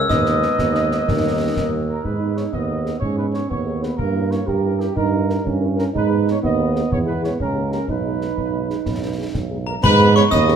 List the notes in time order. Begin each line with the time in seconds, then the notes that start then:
0.09 D#2 G#3 B3 D#4 B4 D#5 D#6, concert bass drum, snare
0.26 snare
0.43 snare
0.58 D#2, concert bass drum, snare
0.75 snare
0.92 snare
1.06 D#2 G3 D#4 A#4, concert bass drum, snare
1.56 D#2, concert bass drum, snare
1.90 A#4
2.04 G#2 D#4 B4, concert bass drum
2.20 B3 D#4 G#4
2.36 B3 D#4 G#4 C#5, snare
2.53 D#2 B3 D#5, concert bass drum
2.68 B3 D#4 G#4
2.84 B3 D#4 G#4, snare
3.00 G#2 C#4 C#5, concert bass drum
3.17 B3 D#4 G#4 B4
3.33 B3 D#4 G#4 C#5, snare
3.50 D#2 B3 C#5, concert bass drum
3.66 B3 D#4 G#4
3.82 B3 D#4 G#4 B4, snare
3.97 G2 A#3 A#4, concert bass drum
4.14 C#4 E4 A#4
4.30 C#4 E4 A#4 C#5, snare
4.47 G2 G4 A#4, concert bass drum
4.64 C#4 E4 A#4
4.79 C#4 E4 G4 A#4, snare
4.96 G2 D#4 A#4, concert bass drum
5.12 C#4 E4 A#4
5.29 C#4 E4 A#4, snare
5.45 G2 C#4, concert bass drum
5.60 C#4 E4 A#4
5.76 C#4 E4 A#4, snare
5.93 G#2 D#4 B4, concert bass drum
6.09 B3 D#4 G#4
6.25 B3 D#4 G#4, snare
6.31 C#5
6.43 D#2 B3 D#5, concert bass drum
6.59 B3 D#4 G#4
6.75 B3 D#4 G#4, snare
6.91 E2 C#5, concert bass drum
7.07 G#3 E4 G#4 B4
7.23 G#3 E4 G#4 C#5, snare
7.40 C#2 C#4 A#4, concert bass drum
7.55 A#3 D#4 G4
7.71 A#3 D#4 G4 A#4, snare
7.88 B1 D#4 B4, concert bass drum
8.05 G#3 D#4 G#4
8.20 G#3 D#4 G#4, snare
8.37 B1, concert bass drum
8.52 G#3 D#4 G#4
8.69 G#3 D#4 G#4, snare
8.86 B1, concert bass drum, snare
9.01 G#3 D#4 G#4
9.18 G#3 D#4 G#4
9.35 B1, concert bass drum, snare
9.51 G#3 D#4 G#4
9.67 G#3 D#4 G#4 A#4 A#5
9.83 G#2 B4 B5, concert bass drum, snare, crash
10.00 B3 D#4 G#4
10.15 B3 D#4 G#4 C#5 C#6, snare
10.31 D#2 B3 D#5 D#6, concert bass drum, snare
10.48 B3 D#4 G#4, snare